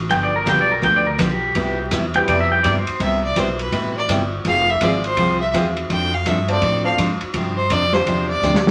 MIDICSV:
0, 0, Header, 1, 8, 480
1, 0, Start_track
1, 0, Key_signature, 0, "major"
1, 0, Tempo, 362100
1, 141, Time_signature, 4, 2, 24, 8
1, 11545, End_track
2, 0, Start_track
2, 0, Title_t, "Fiddle"
2, 0, Program_c, 0, 110
2, 4009, Note_on_c, 0, 76, 85
2, 4278, Note_off_c, 0, 76, 0
2, 4295, Note_on_c, 0, 74, 89
2, 4499, Note_on_c, 0, 72, 80
2, 4519, Note_off_c, 0, 74, 0
2, 4774, Note_off_c, 0, 72, 0
2, 4782, Note_on_c, 0, 71, 83
2, 5220, Note_off_c, 0, 71, 0
2, 5263, Note_on_c, 0, 74, 86
2, 5419, Note_off_c, 0, 74, 0
2, 5932, Note_on_c, 0, 77, 98
2, 6225, Note_on_c, 0, 76, 94
2, 6245, Note_off_c, 0, 77, 0
2, 6415, Note_on_c, 0, 74, 84
2, 6435, Note_off_c, 0, 76, 0
2, 6701, Note_off_c, 0, 74, 0
2, 6709, Note_on_c, 0, 72, 88
2, 7144, Note_off_c, 0, 72, 0
2, 7158, Note_on_c, 0, 76, 98
2, 7325, Note_off_c, 0, 76, 0
2, 7851, Note_on_c, 0, 79, 96
2, 8139, Note_on_c, 0, 77, 92
2, 8159, Note_off_c, 0, 79, 0
2, 8319, Note_on_c, 0, 76, 85
2, 8338, Note_off_c, 0, 77, 0
2, 8612, Note_off_c, 0, 76, 0
2, 8620, Note_on_c, 0, 74, 91
2, 9058, Note_off_c, 0, 74, 0
2, 9081, Note_on_c, 0, 77, 93
2, 9188, Note_off_c, 0, 77, 0
2, 10033, Note_on_c, 0, 72, 91
2, 10233, Note_on_c, 0, 74, 104
2, 10253, Note_off_c, 0, 72, 0
2, 10519, Note_on_c, 0, 72, 94
2, 10538, Note_off_c, 0, 74, 0
2, 10981, Note_off_c, 0, 72, 0
2, 10989, Note_on_c, 0, 74, 90
2, 11441, Note_off_c, 0, 74, 0
2, 11545, End_track
3, 0, Start_track
3, 0, Title_t, "Pedal steel guitar"
3, 0, Program_c, 1, 26
3, 141, Note_on_c, 1, 79, 104
3, 296, Note_off_c, 1, 79, 0
3, 308, Note_on_c, 1, 74, 95
3, 459, Note_off_c, 1, 74, 0
3, 475, Note_on_c, 1, 70, 97
3, 623, Note_off_c, 1, 70, 0
3, 647, Note_on_c, 1, 79, 98
3, 790, Note_off_c, 1, 79, 0
3, 805, Note_on_c, 1, 74, 94
3, 948, Note_off_c, 1, 74, 0
3, 949, Note_on_c, 1, 70, 94
3, 1100, Note_off_c, 1, 70, 0
3, 1115, Note_on_c, 1, 79, 95
3, 1263, Note_off_c, 1, 79, 0
3, 1276, Note_on_c, 1, 74, 99
3, 1414, Note_on_c, 1, 70, 87
3, 1424, Note_off_c, 1, 74, 0
3, 1573, Note_off_c, 1, 70, 0
3, 1579, Note_on_c, 1, 67, 104
3, 2511, Note_off_c, 1, 67, 0
3, 2859, Note_on_c, 1, 79, 92
3, 3015, Note_off_c, 1, 79, 0
3, 3032, Note_on_c, 1, 74, 96
3, 3182, Note_off_c, 1, 74, 0
3, 3188, Note_on_c, 1, 76, 94
3, 3336, Note_on_c, 1, 79, 95
3, 3340, Note_off_c, 1, 76, 0
3, 3489, Note_on_c, 1, 74, 93
3, 3493, Note_off_c, 1, 79, 0
3, 3650, Note_off_c, 1, 74, 0
3, 3675, Note_on_c, 1, 72, 100
3, 3979, Note_off_c, 1, 72, 0
3, 11545, End_track
4, 0, Start_track
4, 0, Title_t, "Honky-tonk piano"
4, 0, Program_c, 2, 3
4, 611, Note_on_c, 2, 55, 70
4, 611, Note_on_c, 2, 62, 63
4, 615, Note_on_c, 2, 59, 62
4, 619, Note_on_c, 2, 65, 63
4, 625, Note_on_c, 2, 67, 77
4, 888, Note_off_c, 2, 55, 0
4, 888, Note_off_c, 2, 62, 0
4, 891, Note_off_c, 2, 59, 0
4, 892, Note_off_c, 2, 65, 0
4, 895, Note_off_c, 2, 67, 0
4, 2845, Note_on_c, 2, 55, 75
4, 2853, Note_on_c, 2, 64, 65
4, 2855, Note_on_c, 2, 60, 68
4, 2855, Note_on_c, 2, 67, 84
4, 2856, Note_on_c, 2, 59, 73
4, 3466, Note_off_c, 2, 55, 0
4, 3470, Note_off_c, 2, 64, 0
4, 3471, Note_off_c, 2, 60, 0
4, 3471, Note_off_c, 2, 67, 0
4, 3472, Note_off_c, 2, 59, 0
4, 6375, Note_on_c, 2, 56, 71
4, 6375, Note_on_c, 2, 60, 63
4, 6383, Note_on_c, 2, 68, 64
4, 6385, Note_on_c, 2, 65, 62
4, 6387, Note_on_c, 2, 72, 74
4, 6651, Note_off_c, 2, 56, 0
4, 6651, Note_off_c, 2, 60, 0
4, 6655, Note_off_c, 2, 68, 0
4, 6656, Note_off_c, 2, 65, 0
4, 6657, Note_off_c, 2, 72, 0
4, 7338, Note_on_c, 2, 56, 63
4, 7344, Note_on_c, 2, 60, 62
4, 7344, Note_on_c, 2, 65, 61
4, 7347, Note_on_c, 2, 68, 59
4, 7355, Note_on_c, 2, 72, 71
4, 7612, Note_off_c, 2, 56, 0
4, 7615, Note_off_c, 2, 60, 0
4, 7615, Note_off_c, 2, 65, 0
4, 7617, Note_off_c, 2, 68, 0
4, 7620, Note_off_c, 2, 72, 0
4, 8594, Note_on_c, 2, 60, 73
4, 8599, Note_on_c, 2, 62, 71
4, 8599, Note_on_c, 2, 65, 68
4, 8607, Note_on_c, 2, 69, 72
4, 8615, Note_on_c, 2, 72, 83
4, 8758, Note_off_c, 2, 60, 0
4, 8761, Note_off_c, 2, 62, 0
4, 8761, Note_off_c, 2, 65, 0
4, 8765, Note_off_c, 2, 69, 0
4, 8768, Note_off_c, 2, 72, 0
4, 9065, Note_on_c, 2, 60, 83
4, 9066, Note_on_c, 2, 62, 80
4, 9069, Note_on_c, 2, 65, 79
4, 9076, Note_on_c, 2, 72, 89
4, 9077, Note_on_c, 2, 69, 71
4, 9233, Note_off_c, 2, 60, 0
4, 9234, Note_off_c, 2, 62, 0
4, 9235, Note_off_c, 2, 65, 0
4, 9239, Note_off_c, 2, 69, 0
4, 9239, Note_off_c, 2, 72, 0
4, 10509, Note_on_c, 2, 60, 74
4, 10514, Note_on_c, 2, 67, 68
4, 10517, Note_on_c, 2, 62, 69
4, 10520, Note_on_c, 2, 65, 68
4, 10523, Note_on_c, 2, 72, 82
4, 11137, Note_off_c, 2, 60, 0
4, 11139, Note_off_c, 2, 67, 0
4, 11141, Note_off_c, 2, 62, 0
4, 11142, Note_off_c, 2, 65, 0
4, 11144, Note_off_c, 2, 72, 0
4, 11545, End_track
5, 0, Start_track
5, 0, Title_t, "Steel-string acoustic guitar"
5, 0, Program_c, 3, 25
5, 124, Note_on_c, 3, 50, 56
5, 126, Note_on_c, 3, 53, 55
5, 128, Note_on_c, 3, 59, 63
5, 130, Note_on_c, 3, 67, 66
5, 134, Note_on_c, 3, 62, 58
5, 417, Note_off_c, 3, 50, 0
5, 418, Note_off_c, 3, 53, 0
5, 419, Note_off_c, 3, 59, 0
5, 420, Note_off_c, 3, 67, 0
5, 422, Note_off_c, 3, 62, 0
5, 601, Note_on_c, 3, 50, 70
5, 608, Note_on_c, 3, 59, 79
5, 609, Note_on_c, 3, 53, 73
5, 617, Note_on_c, 3, 62, 86
5, 621, Note_on_c, 3, 67, 79
5, 762, Note_off_c, 3, 50, 0
5, 765, Note_off_c, 3, 59, 0
5, 766, Note_off_c, 3, 53, 0
5, 770, Note_off_c, 3, 62, 0
5, 772, Note_off_c, 3, 67, 0
5, 1081, Note_on_c, 3, 50, 67
5, 1086, Note_on_c, 3, 59, 69
5, 1087, Note_on_c, 3, 53, 63
5, 1088, Note_on_c, 3, 67, 68
5, 1094, Note_on_c, 3, 62, 62
5, 1376, Note_off_c, 3, 50, 0
5, 1378, Note_off_c, 3, 59, 0
5, 1379, Note_off_c, 3, 53, 0
5, 1379, Note_off_c, 3, 67, 0
5, 1382, Note_off_c, 3, 62, 0
5, 1567, Note_on_c, 3, 50, 73
5, 1569, Note_on_c, 3, 53, 85
5, 1569, Note_on_c, 3, 59, 77
5, 1572, Note_on_c, 3, 62, 84
5, 1579, Note_on_c, 3, 67, 83
5, 1725, Note_off_c, 3, 50, 0
5, 1726, Note_off_c, 3, 53, 0
5, 1726, Note_off_c, 3, 59, 0
5, 1727, Note_off_c, 3, 62, 0
5, 1731, Note_off_c, 3, 67, 0
5, 2059, Note_on_c, 3, 48, 62
5, 2065, Note_on_c, 3, 59, 64
5, 2066, Note_on_c, 3, 55, 59
5, 2066, Note_on_c, 3, 64, 61
5, 2073, Note_on_c, 3, 67, 72
5, 2345, Note_off_c, 3, 48, 0
5, 2348, Note_off_c, 3, 59, 0
5, 2348, Note_off_c, 3, 64, 0
5, 2349, Note_off_c, 3, 55, 0
5, 2352, Note_off_c, 3, 67, 0
5, 2541, Note_on_c, 3, 48, 66
5, 2545, Note_on_c, 3, 55, 80
5, 2548, Note_on_c, 3, 59, 79
5, 2554, Note_on_c, 3, 64, 80
5, 2557, Note_on_c, 3, 67, 77
5, 2692, Note_off_c, 3, 48, 0
5, 2694, Note_off_c, 3, 55, 0
5, 2695, Note_off_c, 3, 59, 0
5, 2698, Note_off_c, 3, 64, 0
5, 2700, Note_off_c, 3, 67, 0
5, 3025, Note_on_c, 3, 48, 68
5, 3032, Note_on_c, 3, 55, 66
5, 3033, Note_on_c, 3, 59, 69
5, 3036, Note_on_c, 3, 67, 73
5, 3037, Note_on_c, 3, 64, 66
5, 3308, Note_off_c, 3, 48, 0
5, 3311, Note_off_c, 3, 55, 0
5, 3312, Note_off_c, 3, 59, 0
5, 3313, Note_off_c, 3, 67, 0
5, 3314, Note_off_c, 3, 64, 0
5, 3499, Note_on_c, 3, 48, 80
5, 3505, Note_on_c, 3, 55, 84
5, 3506, Note_on_c, 3, 59, 84
5, 3510, Note_on_c, 3, 64, 79
5, 3511, Note_on_c, 3, 67, 86
5, 3651, Note_off_c, 3, 48, 0
5, 3654, Note_off_c, 3, 55, 0
5, 3654, Note_off_c, 3, 59, 0
5, 3656, Note_off_c, 3, 64, 0
5, 3657, Note_off_c, 3, 67, 0
5, 3978, Note_on_c, 3, 48, 62
5, 3984, Note_on_c, 3, 55, 56
5, 3988, Note_on_c, 3, 59, 54
5, 3993, Note_on_c, 3, 67, 62
5, 3994, Note_on_c, 3, 64, 60
5, 4265, Note_off_c, 3, 48, 0
5, 4268, Note_off_c, 3, 55, 0
5, 4269, Note_off_c, 3, 59, 0
5, 4272, Note_off_c, 3, 64, 0
5, 4272, Note_off_c, 3, 67, 0
5, 4463, Note_on_c, 3, 48, 73
5, 4463, Note_on_c, 3, 55, 70
5, 4465, Note_on_c, 3, 64, 74
5, 4467, Note_on_c, 3, 59, 77
5, 4471, Note_on_c, 3, 67, 84
5, 4613, Note_off_c, 3, 48, 0
5, 4613, Note_off_c, 3, 55, 0
5, 4614, Note_off_c, 3, 64, 0
5, 4615, Note_off_c, 3, 59, 0
5, 4617, Note_off_c, 3, 67, 0
5, 4936, Note_on_c, 3, 48, 62
5, 4939, Note_on_c, 3, 55, 63
5, 4943, Note_on_c, 3, 59, 65
5, 4950, Note_on_c, 3, 64, 66
5, 4950, Note_on_c, 3, 67, 66
5, 5224, Note_off_c, 3, 48, 0
5, 5225, Note_off_c, 3, 55, 0
5, 5227, Note_off_c, 3, 59, 0
5, 5230, Note_off_c, 3, 64, 0
5, 5230, Note_off_c, 3, 67, 0
5, 5421, Note_on_c, 3, 48, 78
5, 5422, Note_on_c, 3, 55, 79
5, 5427, Note_on_c, 3, 59, 84
5, 5432, Note_on_c, 3, 64, 83
5, 5435, Note_on_c, 3, 67, 78
5, 5572, Note_off_c, 3, 48, 0
5, 5572, Note_off_c, 3, 55, 0
5, 5575, Note_off_c, 3, 59, 0
5, 5578, Note_off_c, 3, 64, 0
5, 5579, Note_off_c, 3, 67, 0
5, 5910, Note_on_c, 3, 53, 56
5, 5912, Note_on_c, 3, 60, 59
5, 5914, Note_on_c, 3, 65, 60
5, 5919, Note_on_c, 3, 68, 60
5, 5920, Note_on_c, 3, 72, 64
5, 6191, Note_off_c, 3, 53, 0
5, 6191, Note_off_c, 3, 60, 0
5, 6192, Note_off_c, 3, 65, 0
5, 6195, Note_off_c, 3, 68, 0
5, 6195, Note_off_c, 3, 72, 0
5, 6378, Note_on_c, 3, 53, 73
5, 6386, Note_on_c, 3, 60, 75
5, 6389, Note_on_c, 3, 65, 72
5, 6392, Note_on_c, 3, 68, 85
5, 6395, Note_on_c, 3, 72, 82
5, 6531, Note_off_c, 3, 53, 0
5, 6535, Note_off_c, 3, 60, 0
5, 6536, Note_off_c, 3, 65, 0
5, 6537, Note_off_c, 3, 68, 0
5, 6539, Note_off_c, 3, 72, 0
5, 6866, Note_on_c, 3, 60, 59
5, 6868, Note_on_c, 3, 53, 58
5, 6875, Note_on_c, 3, 65, 65
5, 6875, Note_on_c, 3, 68, 63
5, 6878, Note_on_c, 3, 72, 64
5, 7149, Note_off_c, 3, 53, 0
5, 7149, Note_off_c, 3, 60, 0
5, 7153, Note_off_c, 3, 65, 0
5, 7153, Note_off_c, 3, 68, 0
5, 7154, Note_off_c, 3, 72, 0
5, 7338, Note_on_c, 3, 53, 72
5, 7342, Note_on_c, 3, 60, 83
5, 7343, Note_on_c, 3, 65, 77
5, 7349, Note_on_c, 3, 68, 77
5, 7352, Note_on_c, 3, 72, 88
5, 7490, Note_off_c, 3, 53, 0
5, 7492, Note_off_c, 3, 60, 0
5, 7493, Note_off_c, 3, 65, 0
5, 7496, Note_off_c, 3, 68, 0
5, 7497, Note_off_c, 3, 72, 0
5, 7818, Note_on_c, 3, 53, 56
5, 7824, Note_on_c, 3, 60, 53
5, 7828, Note_on_c, 3, 62, 61
5, 7832, Note_on_c, 3, 69, 63
5, 8104, Note_off_c, 3, 53, 0
5, 8107, Note_off_c, 3, 60, 0
5, 8109, Note_off_c, 3, 62, 0
5, 8111, Note_off_c, 3, 69, 0
5, 8302, Note_on_c, 3, 53, 73
5, 8307, Note_on_c, 3, 60, 74
5, 8310, Note_on_c, 3, 62, 75
5, 8311, Note_on_c, 3, 69, 86
5, 8452, Note_off_c, 3, 53, 0
5, 8455, Note_off_c, 3, 60, 0
5, 8456, Note_off_c, 3, 62, 0
5, 8456, Note_off_c, 3, 69, 0
5, 8788, Note_on_c, 3, 53, 66
5, 8793, Note_on_c, 3, 60, 59
5, 8796, Note_on_c, 3, 62, 61
5, 8798, Note_on_c, 3, 69, 75
5, 9069, Note_off_c, 3, 53, 0
5, 9071, Note_off_c, 3, 60, 0
5, 9073, Note_off_c, 3, 62, 0
5, 9074, Note_off_c, 3, 69, 0
5, 9257, Note_on_c, 3, 53, 80
5, 9260, Note_on_c, 3, 60, 82
5, 9267, Note_on_c, 3, 69, 81
5, 9270, Note_on_c, 3, 62, 83
5, 9410, Note_off_c, 3, 53, 0
5, 9411, Note_off_c, 3, 60, 0
5, 9414, Note_off_c, 3, 69, 0
5, 9416, Note_off_c, 3, 62, 0
5, 9747, Note_on_c, 3, 53, 57
5, 9748, Note_on_c, 3, 48, 57
5, 9749, Note_on_c, 3, 60, 58
5, 9753, Note_on_c, 3, 62, 57
5, 9760, Note_on_c, 3, 67, 65
5, 10028, Note_off_c, 3, 48, 0
5, 10028, Note_off_c, 3, 53, 0
5, 10029, Note_off_c, 3, 60, 0
5, 10031, Note_off_c, 3, 62, 0
5, 10035, Note_off_c, 3, 67, 0
5, 10221, Note_on_c, 3, 48, 70
5, 10223, Note_on_c, 3, 53, 76
5, 10230, Note_on_c, 3, 60, 72
5, 10231, Note_on_c, 3, 62, 72
5, 10233, Note_on_c, 3, 67, 85
5, 10371, Note_off_c, 3, 48, 0
5, 10372, Note_off_c, 3, 53, 0
5, 10376, Note_off_c, 3, 60, 0
5, 10376, Note_off_c, 3, 62, 0
5, 10377, Note_off_c, 3, 67, 0
5, 10704, Note_on_c, 3, 48, 59
5, 10705, Note_on_c, 3, 53, 62
5, 10709, Note_on_c, 3, 62, 62
5, 10711, Note_on_c, 3, 60, 57
5, 10713, Note_on_c, 3, 67, 67
5, 10986, Note_off_c, 3, 48, 0
5, 10987, Note_off_c, 3, 53, 0
5, 10989, Note_off_c, 3, 62, 0
5, 10990, Note_off_c, 3, 60, 0
5, 10991, Note_off_c, 3, 67, 0
5, 11169, Note_on_c, 3, 48, 78
5, 11177, Note_on_c, 3, 53, 78
5, 11184, Note_on_c, 3, 67, 85
5, 11185, Note_on_c, 3, 60, 76
5, 11186, Note_on_c, 3, 62, 87
5, 11325, Note_off_c, 3, 48, 0
5, 11329, Note_off_c, 3, 53, 0
5, 11332, Note_off_c, 3, 67, 0
5, 11333, Note_off_c, 3, 60, 0
5, 11333, Note_off_c, 3, 62, 0
5, 11545, End_track
6, 0, Start_track
6, 0, Title_t, "Upright bass"
6, 0, Program_c, 4, 32
6, 133, Note_on_c, 4, 31, 90
6, 602, Note_off_c, 4, 31, 0
6, 613, Note_on_c, 4, 35, 96
6, 1082, Note_off_c, 4, 35, 0
6, 1093, Note_on_c, 4, 38, 92
6, 1563, Note_off_c, 4, 38, 0
6, 1569, Note_on_c, 4, 35, 91
6, 2040, Note_off_c, 4, 35, 0
6, 2056, Note_on_c, 4, 36, 94
6, 2524, Note_off_c, 4, 36, 0
6, 2533, Note_on_c, 4, 40, 90
6, 3003, Note_off_c, 4, 40, 0
6, 3014, Note_on_c, 4, 41, 85
6, 3483, Note_off_c, 4, 41, 0
6, 3501, Note_on_c, 4, 43, 92
6, 3783, Note_off_c, 4, 43, 0
6, 3973, Note_on_c, 4, 36, 91
6, 4442, Note_off_c, 4, 36, 0
6, 4456, Note_on_c, 4, 35, 88
6, 4924, Note_off_c, 4, 35, 0
6, 4934, Note_on_c, 4, 33, 88
6, 5403, Note_off_c, 4, 33, 0
6, 5413, Note_on_c, 4, 31, 87
6, 5883, Note_off_c, 4, 31, 0
6, 5896, Note_on_c, 4, 29, 92
6, 6364, Note_off_c, 4, 29, 0
6, 6376, Note_on_c, 4, 32, 95
6, 6844, Note_off_c, 4, 32, 0
6, 6855, Note_on_c, 4, 36, 89
6, 7324, Note_off_c, 4, 36, 0
6, 7337, Note_on_c, 4, 40, 84
6, 7805, Note_off_c, 4, 40, 0
6, 7818, Note_on_c, 4, 41, 89
6, 8285, Note_off_c, 4, 41, 0
6, 8297, Note_on_c, 4, 43, 92
6, 8764, Note_off_c, 4, 43, 0
6, 8773, Note_on_c, 4, 45, 85
6, 9242, Note_off_c, 4, 45, 0
6, 9250, Note_on_c, 4, 44, 89
6, 9537, Note_off_c, 4, 44, 0
6, 9730, Note_on_c, 4, 43, 89
6, 10200, Note_off_c, 4, 43, 0
6, 10211, Note_on_c, 4, 41, 92
6, 10681, Note_off_c, 4, 41, 0
6, 10692, Note_on_c, 4, 40, 89
6, 11151, Note_off_c, 4, 40, 0
6, 11159, Note_on_c, 4, 38, 88
6, 11545, Note_off_c, 4, 38, 0
6, 11545, End_track
7, 0, Start_track
7, 0, Title_t, "Muted upright bass strokes"
7, 3811, Note_on_c, 9, 29, 42
7, 3944, Note_off_c, 9, 29, 0
7, 9570, Note_on_c, 9, 29, 41
7, 9703, Note_off_c, 9, 29, 0
7, 11545, End_track
8, 0, Start_track
8, 0, Title_t, "Drums"
8, 131, Note_on_c, 9, 36, 23
8, 137, Note_on_c, 9, 51, 63
8, 264, Note_off_c, 9, 36, 0
8, 270, Note_off_c, 9, 51, 0
8, 611, Note_on_c, 9, 36, 20
8, 619, Note_on_c, 9, 44, 58
8, 619, Note_on_c, 9, 51, 75
8, 744, Note_off_c, 9, 36, 0
8, 752, Note_off_c, 9, 44, 0
8, 752, Note_off_c, 9, 51, 0
8, 1093, Note_on_c, 9, 36, 28
8, 1102, Note_on_c, 9, 51, 62
8, 1226, Note_off_c, 9, 36, 0
8, 1234, Note_off_c, 9, 51, 0
8, 1575, Note_on_c, 9, 36, 20
8, 1575, Note_on_c, 9, 44, 63
8, 1575, Note_on_c, 9, 51, 81
8, 1708, Note_off_c, 9, 36, 0
8, 1708, Note_off_c, 9, 44, 0
8, 1708, Note_off_c, 9, 51, 0
8, 2054, Note_on_c, 9, 51, 67
8, 2058, Note_on_c, 9, 36, 25
8, 2187, Note_off_c, 9, 51, 0
8, 2191, Note_off_c, 9, 36, 0
8, 2533, Note_on_c, 9, 44, 69
8, 2533, Note_on_c, 9, 51, 73
8, 2539, Note_on_c, 9, 36, 24
8, 2666, Note_off_c, 9, 44, 0
8, 2666, Note_off_c, 9, 51, 0
8, 2671, Note_off_c, 9, 36, 0
8, 2836, Note_on_c, 9, 51, 49
8, 2969, Note_off_c, 9, 51, 0
8, 3019, Note_on_c, 9, 36, 28
8, 3019, Note_on_c, 9, 51, 69
8, 3151, Note_off_c, 9, 36, 0
8, 3151, Note_off_c, 9, 51, 0
8, 3498, Note_on_c, 9, 36, 28
8, 3500, Note_on_c, 9, 44, 55
8, 3500, Note_on_c, 9, 51, 76
8, 3631, Note_off_c, 9, 36, 0
8, 3633, Note_off_c, 9, 44, 0
8, 3633, Note_off_c, 9, 51, 0
8, 3804, Note_on_c, 9, 51, 52
8, 3937, Note_off_c, 9, 51, 0
8, 3979, Note_on_c, 9, 36, 24
8, 3979, Note_on_c, 9, 51, 59
8, 4111, Note_off_c, 9, 36, 0
8, 4111, Note_off_c, 9, 51, 0
8, 4454, Note_on_c, 9, 44, 55
8, 4454, Note_on_c, 9, 51, 74
8, 4456, Note_on_c, 9, 36, 20
8, 4587, Note_off_c, 9, 44, 0
8, 4587, Note_off_c, 9, 51, 0
8, 4589, Note_off_c, 9, 36, 0
8, 4761, Note_on_c, 9, 51, 49
8, 4894, Note_off_c, 9, 51, 0
8, 4936, Note_on_c, 9, 36, 26
8, 4936, Note_on_c, 9, 51, 66
8, 5068, Note_off_c, 9, 36, 0
8, 5069, Note_off_c, 9, 51, 0
8, 5417, Note_on_c, 9, 36, 20
8, 5420, Note_on_c, 9, 44, 74
8, 5420, Note_on_c, 9, 51, 80
8, 5550, Note_off_c, 9, 36, 0
8, 5552, Note_off_c, 9, 44, 0
8, 5552, Note_off_c, 9, 51, 0
8, 5895, Note_on_c, 9, 51, 62
8, 5896, Note_on_c, 9, 36, 26
8, 6027, Note_off_c, 9, 51, 0
8, 6029, Note_off_c, 9, 36, 0
8, 6374, Note_on_c, 9, 44, 59
8, 6374, Note_on_c, 9, 51, 82
8, 6377, Note_on_c, 9, 36, 22
8, 6506, Note_off_c, 9, 44, 0
8, 6506, Note_off_c, 9, 51, 0
8, 6510, Note_off_c, 9, 36, 0
8, 6681, Note_on_c, 9, 51, 48
8, 6814, Note_off_c, 9, 51, 0
8, 6852, Note_on_c, 9, 51, 68
8, 6859, Note_on_c, 9, 36, 29
8, 6985, Note_off_c, 9, 51, 0
8, 6991, Note_off_c, 9, 36, 0
8, 7341, Note_on_c, 9, 36, 25
8, 7347, Note_on_c, 9, 44, 54
8, 7347, Note_on_c, 9, 51, 71
8, 7473, Note_off_c, 9, 36, 0
8, 7480, Note_off_c, 9, 44, 0
8, 7480, Note_off_c, 9, 51, 0
8, 7643, Note_on_c, 9, 51, 50
8, 7776, Note_off_c, 9, 51, 0
8, 7819, Note_on_c, 9, 36, 21
8, 7820, Note_on_c, 9, 51, 61
8, 7952, Note_off_c, 9, 36, 0
8, 7952, Note_off_c, 9, 51, 0
8, 8295, Note_on_c, 9, 44, 55
8, 8295, Note_on_c, 9, 51, 68
8, 8298, Note_on_c, 9, 36, 21
8, 8428, Note_off_c, 9, 44, 0
8, 8428, Note_off_c, 9, 51, 0
8, 8430, Note_off_c, 9, 36, 0
8, 8594, Note_on_c, 9, 51, 48
8, 8727, Note_off_c, 9, 51, 0
8, 8770, Note_on_c, 9, 51, 63
8, 8775, Note_on_c, 9, 36, 25
8, 8903, Note_off_c, 9, 51, 0
8, 8907, Note_off_c, 9, 36, 0
8, 9255, Note_on_c, 9, 36, 28
8, 9257, Note_on_c, 9, 44, 54
8, 9257, Note_on_c, 9, 51, 84
8, 9388, Note_off_c, 9, 36, 0
8, 9389, Note_off_c, 9, 44, 0
8, 9389, Note_off_c, 9, 51, 0
8, 9553, Note_on_c, 9, 51, 54
8, 9686, Note_off_c, 9, 51, 0
8, 9726, Note_on_c, 9, 51, 68
8, 9731, Note_on_c, 9, 36, 19
8, 9858, Note_off_c, 9, 51, 0
8, 9863, Note_off_c, 9, 36, 0
8, 10207, Note_on_c, 9, 44, 58
8, 10207, Note_on_c, 9, 51, 74
8, 10211, Note_on_c, 9, 36, 19
8, 10340, Note_off_c, 9, 44, 0
8, 10340, Note_off_c, 9, 51, 0
8, 10344, Note_off_c, 9, 36, 0
8, 10508, Note_on_c, 9, 38, 39
8, 10640, Note_off_c, 9, 38, 0
8, 10690, Note_on_c, 9, 36, 25
8, 10693, Note_on_c, 9, 51, 64
8, 10823, Note_off_c, 9, 36, 0
8, 10826, Note_off_c, 9, 51, 0
8, 11174, Note_on_c, 9, 44, 69
8, 11307, Note_off_c, 9, 44, 0
8, 11329, Note_on_c, 9, 38, 60
8, 11461, Note_off_c, 9, 38, 0
8, 11496, Note_on_c, 9, 38, 86
8, 11545, Note_off_c, 9, 38, 0
8, 11545, End_track
0, 0, End_of_file